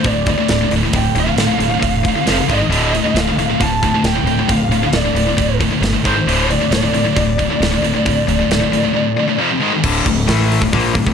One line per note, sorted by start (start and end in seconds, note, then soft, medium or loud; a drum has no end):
0.03 0.30 D1 medium
0.03 0.25 D2 medium
0.03 0.25 A2 medium
0.03 0.27 D5 medium
0.03 kick medium
0.03 open hi-hat medium
0.26 0.37 D2 medium
0.26 0.37 A2 medium
0.26 0.69 D5 medium
0.26 kick medium
0.26 open hi-hat medium
0.38 0.49 D2 medium
0.38 0.49 A2 medium
0.48 0.63 D1 loud
0.48 0.59 D2 medium
0.48 0.60 A2 medium
0.48 snare loud
0.48 open hi-hat medium
0.61 0.71 D2 medium
0.61 0.71 A2 medium
0.71 0.84 D1 medium
0.71 0.83 D2 medium
0.71 0.82 A2 medium
0.71 open hi-hat soft
0.76 0.84 A2 medium
0.83 0.93 D2 medium
0.83 0.93 A2 medium
0.93 1.06 D1 loud
0.93 1.14 D2 medium
0.93 1.14 A2 medium
0.93 1.18 G5 medium
0.93 kick loud
0.93 open hi-hat medium
1.15 1.28 D1 loud
1.15 1.25 D2 medium
1.15 1.25 A2 medium
1.15 open hi-hat medium
1.20 2.51 F5 loud
1.26 1.37 D2 medium
1.26 1.37 A2 medium
1.36 1.50 D1 medium
1.36 1.46 D2 medium
1.36 1.46 A2 medium
1.36 snare loud
1.36 open hi-hat medium
1.47 1.57 D2 medium
1.47 1.57 A2 medium
1.52 1.61 A2 medium
1.58 1.73 D1 medium
1.58 1.68 D2 medium
1.58 1.68 A2 medium
1.58 open hi-hat medium
1.62 1.72 D2 medium
1.62 1.72 A2 medium
1.69 1.78 D2 medium
1.69 1.79 A2 medium
1.74 1.84 D2 medium
1.74 1.84 A2 medium
1.79 2.09 E1 medium
1.79 2.01 D2 medium
1.79 2.01 A2 medium
1.79 kick loud
1.79 open hi-hat medium
1.85 2.04 D2 medium
1.85 2.04 A2 medium
2.03 2.14 D2 medium
2.03 2.14 A2 medium
2.03 kick medium
2.03 open hi-hat medium
2.08 2.17 D2 medium
2.08 2.17 A2 medium
2.15 2.26 D2 medium
2.15 2.26 A2 medium
2.26 2.40 F1 loud
2.26 2.36 F2 medium
2.26 2.37 C3 loud
2.26 2.37 F3 medium
2.26 snare loud
2.26 open hi-hat medium
2.38 2.48 F2 medium
2.38 2.48 C3 medium
2.48 2.62 G#1 medium
2.48 2.58 G#2 medium
2.48 2.59 D#3 loud
2.48 2.59 G#3 loud
2.48 3.18 D#5 medium
2.48 kick loud
2.48 open hi-hat medium
2.61 2.69 G#2 medium
2.61 2.70 D#3 medium
2.69 2.97 D1 medium
2.69 2.91 D2 medium
2.69 2.92 A2 medium
2.69 2.92 D3 loud
2.69 open hi-hat medium
2.94 3.04 D2 medium
2.94 3.05 A2 medium
2.94 open hi-hat medium
3.05 3.15 D2 medium
3.05 3.16 A2 medium
3.14 3.28 D1 medium
3.14 3.27 D2 medium
3.14 3.27 A2 medium
3.14 snare loud
3.14 open hi-hat medium
3.19 3.63 F5 loud
3.28 3.38 D2 medium
3.28 3.37 A2 medium
3.37 3.51 D1 medium
3.37 3.49 D2 medium
3.37 3.48 A2 medium
3.37 open hi-hat medium
3.50 3.60 D2 medium
3.50 3.61 A2 medium
3.60 3.87 D1 medium
3.60 3.81 D2 medium
3.60 3.81 A2 loud
3.60 4.06 A5 loud
3.60 kick medium
3.60 open hi-hat medium
3.83 3.94 D2 medium
3.83 3.93 A2 medium
3.83 kick medium
3.83 open hi-hat medium
3.94 4.04 D2 medium
3.94 4.04 A2 medium
4.04 4.18 D1 loud
4.04 4.15 D2 medium
4.04 4.14 A2 medium
4.04 4.51 G5 loud
4.04 snare loud
4.04 open hi-hat medium
4.16 4.26 D2 medium
4.16 4.25 A2 medium
4.24 4.38 D1 medium
4.24 4.38 D2 medium
4.24 4.38 A2 medium
4.24 open hi-hat soft
4.39 4.47 D2 medium
4.39 4.48 A2 medium
4.48 4.62 D1 loud
4.48 4.69 D2 medium
4.48 4.69 A2 medium
4.48 4.92 F5 medium
4.48 kick loud
4.48 open hi-hat medium
4.69 4.83 D1 medium
4.69 4.82 D2 medium
4.69 4.82 A2 medium
4.69 open hi-hat medium
4.83 4.92 D2 medium
4.83 4.93 A2 medium
4.93 5.07 D1 medium
4.93 5.03 D2 medium
4.93 5.03 A2 medium
4.93 5.58 D5 medium
4.93 snare loud
4.93 open hi-hat medium
5.04 5.14 D2 medium
5.04 5.14 A2 medium
5.15 5.29 D1 medium
5.15 5.26 D2 medium
5.15 5.25 A2 medium
5.15 open hi-hat medium
5.27 5.35 D2 medium
5.27 5.35 A2 medium
5.37 5.65 D1 medium
5.37 5.58 D2 medium
5.37 5.58 A2 medium
5.37 kick medium
5.37 open hi-hat medium
5.60 5.70 D2 medium
5.60 5.69 A2 medium
5.60 kick medium
5.60 open hi-hat medium
5.71 5.81 D2 medium
5.71 5.81 A2 medium
5.81 5.95 G1 loud
5.81 5.92 D2 medium
5.81 5.91 A2 medium
5.81 snare loud
5.81 open hi-hat medium
5.93 6.04 D2 medium
5.93 6.04 A2 medium
6.04 6.18 G#1 medium
6.04 6.15 G#2 loud
6.04 6.15 D#3 loud
6.04 6.15 G#3 loud
6.04 6.47 C5 loud
6.04 kick medium
6.04 open hi-hat medium
6.16 6.27 G#2 medium
6.16 6.27 D#3 medium
6.26 6.54 D1 medium
6.26 6.48 D2 medium
6.26 6.48 A2 medium
6.26 6.49 D3 medium
6.26 open hi-hat medium
6.49 6.60 D2 medium
6.49 6.59 A2 medium
6.49 6.71 D5 medium
6.49 open hi-hat medium
6.60 6.71 D2 medium
6.60 6.72 A2 medium
6.70 6.84 D1 medium
6.70 6.82 D2 medium
6.70 6.81 A2 medium
6.70 9.35 D5 loud
6.70 snare loud
6.70 open hi-hat medium
6.83 6.93 D2 medium
6.83 6.92 A2 medium
6.94 7.08 D1 medium
6.94 7.05 D2 medium
6.94 7.04 A2 medium
6.94 open hi-hat medium
7.05 7.15 D2 medium
7.05 7.15 A2 medium
7.16 7.43 D1 medium
7.16 7.37 D2 medium
7.16 7.37 A2 medium
7.16 kick medium
7.16 open hi-hat medium
7.38 7.49 D2 medium
7.38 7.49 A2 medium
7.38 kick medium
7.38 open hi-hat soft
7.50 7.60 D2 medium
7.50 7.61 A2 medium
7.60 7.74 D1 loud
7.60 7.71 D2 medium
7.60 7.70 A2 medium
7.60 snare loud
7.60 open hi-hat medium
7.71 7.81 D2 medium
7.71 7.81 A2 medium
7.82 7.96 D1 medium
7.82 7.93 D2 medium
7.82 7.92 A2 medium
7.82 open hi-hat medium
7.94 8.04 D2 medium
7.94 8.05 A2 medium
8.05 8.19 D1 loud
8.05 8.26 D2 medium
8.05 8.26 A2 medium
8.05 kick loud
8.05 open hi-hat medium
8.27 8.42 D1 medium
8.27 8.38 D2 medium
8.27 8.38 A2 medium
8.27 open hi-hat medium
8.39 8.50 D2 medium
8.39 8.50 A2 medium
8.49 8.63 D1 medium
8.49 8.60 D2 medium
8.49 8.59 A2 medium
8.49 snare loud
8.49 open hi-hat medium
8.60 8.71 D2 medium
8.60 8.71 A2 medium
8.72 8.86 D1 medium
8.72 8.83 D2 medium
8.72 8.82 A2 medium
8.72 open hi-hat soft
8.83 8.92 D2 medium
8.83 8.92 A2 medium
8.93 9.14 D2 medium
8.93 9.14 A2 medium
9.16 9.27 D2 medium
9.16 9.27 A2 medium
9.28 9.38 D2 medium
9.28 9.39 A2 medium
9.38 9.49 F2 medium
9.38 9.49 C3 medium
9.38 9.49 F3 loud
9.51 9.60 F2 medium
9.51 9.61 C3 medium
9.60 9.71 G#2 loud
9.60 9.71 D#3 loud
9.60 9.72 G#3 loud
9.73 9.83 G#2 medium
9.73 9.83 D#3 medium
9.83 10.05 D1 medium
9.83 10.05 D2 loud
9.83 10.05 A2 loud
9.83 10.06 D3 loud
9.83 kick loud
9.83 crash loud
10.05 10.27 D1 medium
10.05 10.24 D2 medium
10.05 10.24 A2 medium
10.05 kick loud
10.05 open hi-hat medium
10.27 10.59 A1 loud
10.27 10.61 A2 medium
10.27 10.61 E3 loud
10.27 10.61 A3 loud
10.27 snare loud
10.27 open hi-hat medium
10.52 open hi-hat medium
10.61 10.72 D1 medium
10.61 10.72 D2 medium
10.61 10.73 A2 medium
10.61 kick medium
10.73 10.94 A#1 medium
10.73 10.94 A#2 loud
10.73 10.95 F3 loud
10.73 10.95 A#3 loud
10.73 kick loud
10.73 open hi-hat medium
10.95 11.05 D1 medium
10.95 11.06 D2 medium
10.95 11.06 A2 medium
10.95 kick medium
10.95 open hi-hat medium
11.06 11.14 D1 medium
11.06 11.14 D2 medium
11.06 11.14 A2 medium
11.06 kick medium